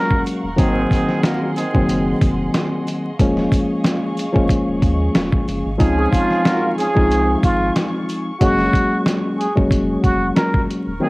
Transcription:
0.00 0.47 F#3 medium
0.00 0.47 G#3 medium
0.00 0.48 A#3 medium
0.00 0.48 C#4 loud
0.00 0.22 A#4 medium
0.00 0.56 A#4 medium
0.00 0.56 F5 medium
0.00 3.15 F#5 medium
0.00 0.54 C#6 medium
0.11 kick loud
0.26 closed hi-hat medium
0.26 sleigh bells medium
0.44 0.56 D#1 medium
0.56 0.85 G#1 loud
0.56 1.63 D#3 loud
0.56 1.20 D#3 loud
0.56 1.63 F#3 medium
0.56 1.63 A#3 medium
0.56 1.64 C4 loud
0.56 1.20 C4 loud
0.56 3.16 G#4 medium
0.56 1.20 G#4 loud
0.56 5.76 D#5 medium
0.56 3.16 C6 medium
0.56 kick loud
0.56 closed hi-hat loud
0.56 sleigh bells soft
0.91 kick medium
0.91 closed hi-hat medium
0.91 sleigh bells medium
1.09 snare soft
1.23 1.50 A#3 medium
1.23 1.50 F#4 medium
1.23 1.50 A#4 loud
1.23 snare loud
1.23 closed hi-hat medium
1.23 sleigh bells medium
1.56 2.18 D#3 medium
1.56 2.18 C4 medium
1.56 2.18 G#4 medium
1.56 closed hi-hat medium
1.56 sleigh bells medium
1.74 2.14 F#1 loud
1.74 3.08 D#3 medium
1.74 3.09 F#3 medium
1.74 3.09 A#3 medium
1.74 3.09 C4 loud
1.74 kick medium
1.89 closed hi-hat medium
1.89 sleigh bells medium
2.21 2.48 F1 medium
2.21 kick loud
2.21 closed hi-hat medium
2.21 sleigh bells medium
2.54 snare loud
2.54 closed hi-hat medium
2.54 sleigh bells medium
2.87 closed hi-hat medium
2.87 sleigh bells medium
3.19 3.46 D#1 loud
3.19 4.25 F3 medium
3.19 4.25 G#3 medium
3.19 4.26 A#3 medium
3.19 4.26 C#4 loud
3.19 5.78 G#4 medium
3.19 5.78 F5 medium
3.19 5.78 C#6 medium
3.19 kick loud
3.19 closed hi-hat loud
3.19 sleigh bells soft
3.37 snare soft
3.52 kick medium
3.52 closed hi-hat medium
3.52 sleigh bells medium
3.84 snare loud
3.84 closed hi-hat medium
3.84 sleigh bells medium
4.17 closed hi-hat medium
4.17 sleigh bells medium
4.33 4.48 D#1 medium
4.33 5.68 F3 loud
4.33 5.69 G#3 medium
4.33 5.69 A#3 medium
4.33 5.69 C#4 loud
4.33 kick medium
4.49 kick medium
4.49 closed hi-hat medium
4.49 sleigh bells medium
4.68 4.80 D#1 loud
4.82 5.09 D#2 loud
4.82 kick medium
4.82 closed hi-hat medium
4.82 sleigh bells medium
5.15 5.30 D#1 loud
5.15 snare loud
5.15 closed hi-hat medium
5.15 sleigh bells medium
5.33 kick loud
5.48 5.62 F#1 medium
5.48 closed hi-hat medium
5.48 sleigh bells medium
5.65 5.78 G#1 medium
5.78 6.07 C#2 loud
5.78 6.85 F3 medium
5.78 6.41 F3 loud
5.78 6.85 G#3 medium
5.78 6.85 C4 medium
5.78 6.41 C#4 loud
5.78 6.86 D#4 medium
5.78 6.41 G#4 loud
5.78 8.38 G#4 medium
5.78 8.38 F5 medium
5.78 8.38 G#5 medium
5.78 10.98 C#6 medium
5.78 kick loud
5.78 closed hi-hat loud
5.78 sleigh bells soft
5.97 6.10 G#4 medium
6.11 6.73 F4 medium
6.11 kick medium
6.11 closed hi-hat medium
6.11 sleigh bells medium
6.31 snare soft
6.45 6.71 F#3 loud
6.45 6.71 A#3 medium
6.45 6.71 A#4 loud
6.45 snare loud
6.45 closed hi-hat medium
6.45 sleigh bells medium
6.78 7.39 F3 medium
6.78 7.39 C#4 medium
6.78 7.39 G#4 medium
6.78 closed hi-hat medium
6.78 sleigh bells medium
6.94 7.36 C2 medium
6.94 8.30 F3 loud
6.94 8.30 G#3 medium
6.94 8.30 C4 medium
6.94 8.30 D#4 loud
6.94 kick medium
7.10 closed hi-hat medium
7.10 sleigh bells medium
7.43 7.70 G#1 loud
7.43 7.72 F4 medium
7.43 kick loud
7.43 closed hi-hat medium
7.43 sleigh bells medium
7.76 snare loud
7.76 closed hi-hat medium
7.76 sleigh bells medium
8.09 closed hi-hat medium
8.09 sleigh bells medium
8.40 8.68 F#1 loud
8.40 9.46 F#3 medium
8.40 9.47 G#3 loud
8.40 9.47 A#3 medium
8.40 9.47 C#4 loud
8.40 9.02 F#4 loud
8.40 kick loud
8.40 closed hi-hat loud
8.59 snare soft
8.73 kick medium
8.73 closed hi-hat medium
9.06 snare loud
9.06 closed hi-hat medium
9.38 9.54 G#4 medium
9.38 closed hi-hat medium
9.55 9.96 F1 medium
9.55 10.91 F#3 medium
9.55 10.91 G#3 medium
9.55 10.91 A#3 medium
9.55 10.91 C#4 loud
9.55 kick medium
9.71 kick medium
9.71 closed hi-hat medium
10.03 10.31 F1 medium
10.03 10.33 F#4 medium
10.03 kick loud
10.03 closed hi-hat medium
10.35 10.65 A#4 medium
10.35 snare loud
10.35 closed hi-hat medium
10.54 kick loud
10.71 closed hi-hat medium
10.87 10.99 D#1 medium
11.00 11.09 D#3 loud
11.00 11.09 F#3 medium
11.00 11.09 A#3 medium
11.00 11.09 C4 loud
11.00 11.09 G#4 loud

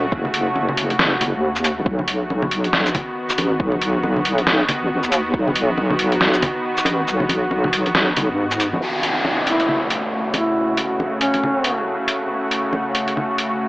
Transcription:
0.00 0.11 E1 medium
0.00 1.82 C#3 medium
0.00 1.82 A3 medium
0.00 1.82 F#4 medium
0.12 1.35 F#1 medium
0.12 kick loud
0.25 low conga medium
0.34 closed hi-hat medium
0.56 muted conga medium
0.69 low conga medium
0.77 closed hi-hat medium
0.90 closed hi-hat soft
0.90 muted conga soft
0.99 snare loud
1.21 closed hi-hat medium
1.21 low conga medium
1.34 1.79 D#2 medium
1.56 shaker medium
1.64 closed hi-hat medium
1.64 shaker medium
1.77 1.85 G#1 medium
1.86 2.94 B1 loud
1.86 8.77 D#3 medium
1.86 8.78 B3 medium
1.86 8.77 F#4 medium
1.86 kick loud
1.99 low conga medium
2.08 closed hi-hat medium
2.30 muted conga medium
2.42 low conga medium
2.51 closed hi-hat medium
2.64 closed hi-hat soft
2.73 snare loud
2.86 shaker medium
2.94 kick loud
2.94 closed hi-hat medium
2.94 low conga medium
3.29 shaker medium
3.38 3.58 A1 loud
3.38 closed hi-hat medium
3.38 muted conga medium
3.60 4.67 B1 loud
3.60 kick loud
3.72 low conga medium
3.82 closed hi-hat medium
4.03 muted conga medium
4.16 low conga medium
4.25 closed hi-hat medium
4.38 closed hi-hat soft
4.38 muted conga soft
4.47 snare loud
4.69 closed hi-hat medium
4.69 low conga medium
4.82 5.01 A1 medium
5.03 5.33 D#2 medium
5.03 shaker medium
5.12 closed hi-hat medium
5.12 shaker medium
5.34 6.41 B1 loud
5.34 kick loud
5.48 low conga medium
5.56 closed hi-hat medium
5.78 muted conga medium
5.90 low conga medium
5.99 closed hi-hat medium
6.12 closed hi-hat soft
6.21 snare loud
6.34 shaker medium
6.42 kick loud
6.42 closed hi-hat medium
6.42 low conga medium
6.77 shaker medium
6.85 7.06 A1 loud
6.85 closed hi-hat medium
6.85 muted conga medium
7.08 8.31 B1 loud
7.08 shaker medium
7.20 low conga medium
7.29 closed hi-hat medium
7.29 high conga medium
7.51 muted conga medium
7.64 low conga loud
7.73 closed hi-hat medium
7.86 closed hi-hat soft
7.86 muted conga soft
7.95 snare loud
8.16 closed hi-hat medium
8.16 low conga medium
8.29 8.74 G#2 medium
8.51 shaker medium
8.60 closed hi-hat medium
8.60 shaker medium
8.73 8.81 C#2 medium
8.73 high conga medium
8.82 13.68 C#3 medium
8.82 13.68 A3 medium
8.82 13.68 F#4 medium
8.82 downlifter medium
9.03 closed hi-hat medium
9.25 muted conga medium
9.47 9.82 E4 medium
9.47 closed hi-hat medium
9.60 closed hi-hat soft
9.68 low conga medium
9.90 closed hi-hat medium
10.34 10.77 E4 medium
10.34 closed hi-hat medium
10.34 muted conga medium
10.77 closed hi-hat medium
11.00 muted conga medium
11.21 11.83 C#4 medium
11.21 closed hi-hat medium
11.34 closed hi-hat soft
11.34 muted conga soft
11.43 low conga medium
11.64 closed hi-hat medium
12.08 closed hi-hat medium
12.51 closed hi-hat medium
12.73 muted conga medium
12.95 closed hi-hat medium
13.08 closed hi-hat soft
13.17 low conga medium
13.38 closed hi-hat medium

